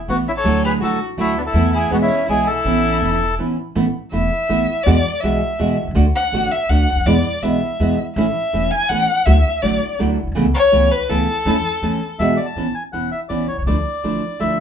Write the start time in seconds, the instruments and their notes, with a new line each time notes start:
0.07 upright bass A1, nylon-string guitar E3 A3 B3 E4, violin B3, bandoneon F#4
0.28 violin C#4, bandoneon E4
0.37 violin A4, bandoneon C#5
0.44 upright bass D2, nylon-string guitar D3 F#3 A3 E4 F#4
0.63 violin G#4, bandoneon B4
0.80 upright bass A1, nylon-string guitar D3 F#3 A3 E4 F#4, violin F#4, bandoneon A4
1.17 upright bass D2, nylon-string guitar D3 F#3 A3 E4 F#4, violin A3, bandoneon E4
1.38 violin B3, bandoneon D4
1.47 violin E4, bandoneon A4
1.54 upright bass E2, nylon-string guitar E3 A3 B3 E4
1.73 violin E4, bandoneon G#4
1.91 upright bass E2, nylon-string guitar B2 E3 G#3 B3 E4, violin B3, bandoneon F#4
2.01 violin C#4, bandoneon E4
2.28 upright bass B1, nylon-string guitar B2 E3 G#3 B3 E4, violin E4, bandoneon G#4
2.47 violin E4, bandoneon A4
2.64 upright bass A1, nylon-string guitar E3 B3 C#4 E4
3.02 upright bass E1, nylon-string guitar E3 B3 C#4 E4
3.39 upright bass A1, nylon-string guitar E3 B3 C#4 E4
3.75 upright bass A1, nylon-string guitar E3 A3 B3 E4
4.12 upright bass E1, nylon-string guitar E3 A3 B3 E4, violin E5
4.49 upright bass A1, nylon-string guitar E3 A3 B3 E4
4.83 upright bass E2, nylon-string guitar B2 E3 G#3 B3 F#4, violin D5
5.21 upright bass B1, nylon-string guitar B2 E3 G#3 B3 F#4, violin E5
5.59 upright bass E2, nylon-string guitar B2 E3 G#3 B3 F#4
5.83 upright bass B1
5.87 upright bass C2 C#2
5.95 upright bass D2, nylon-string guitar D3 A3 D4 F#4
6.16 violin F#5
6.32 upright bass A1, nylon-string guitar D3 A3 D4 F#4
6.52 violin E5
6.69 upright bass D2, nylon-string guitar D3 A3 D4 F#4, violin F#5
6.92 upright bass C#2
6.96 upright bass D2
7.01 upright bass D#2
7.06 upright bass E2, nylon-string guitar B2 E3 G#3 B3 E4, violin D5
7.42 upright bass B1, nylon-string guitar B2 E3 G#3 B3 E4, violin E5
7.80 upright bass E2, nylon-string guitar B2 E3 G#3 B3 E4
8.16 upright bass A1, nylon-string guitar E3 A3 C#4 E4, violin E5
8.53 upright bass E1, nylon-string guitar E3 A3 C#4 E4
8.71 violin G#5
8.88 upright bass A1, nylon-string guitar E3 A3 C#4 E4, violin F#5
9.25 upright bass D2, nylon-string guitar D3 F#3 A3 E4 F#4, violin E5
9.62 upright bass A1, nylon-string guitar D3 F#3 A3 E4 F#4, violin D5
9.99 upright bass D2, nylon-string guitar D3 F#3 A3 E4 F#4
10.23 upright bass A#1
10.27 upright bass B1
10.32 upright bass C2, nylon-string guitar C#3 E3 A3
10.36 upright bass C#2, nylon-string guitar B3 E4
10.55 violin C#5
10.72 upright bass C#2, nylon-string guitar C#3 E3 A3 B3 E4
10.91 violin B4
11.09 upright bass C#2, nylon-string guitar C#3 E3 A3 B3 E4, violin A4
11.45 upright bass E2, nylon-string guitar E3 A3 C#4 E4
11.82 upright bass E2, nylon-string guitar E3 A3 C#4 E4
12.19 upright bass E2, nylon-string guitar B2 E3 G#3 B3 F#4, bandoneon E5
12.37 bandoneon D5
12.46 bandoneon A5
12.56 upright bass A1, nylon-string guitar E3 B3 C#4 E4
12.75 bandoneon G#5
12.93 upright bass E1, nylon-string guitar E3 B3 C#4 E4, bandoneon F#5
13.12 bandoneon E5
13.29 upright bass A1, nylon-string guitar E3 B3 C#4 E4, bandoneon D5
13.48 bandoneon C#5
13.53 upright bass B1
13.57 upright bass C2, bandoneon C#5
13.62 upright bass C#2
13.67 upright bass D2, nylon-string guitar D3 F3 A3 D4 E4, bandoneon D5
14.04 upright bass A1, nylon-string guitar D3 F3 A3 D4 E4
14.39 upright bass D2, nylon-string guitar D3 F3 A3 D4 E4, bandoneon E5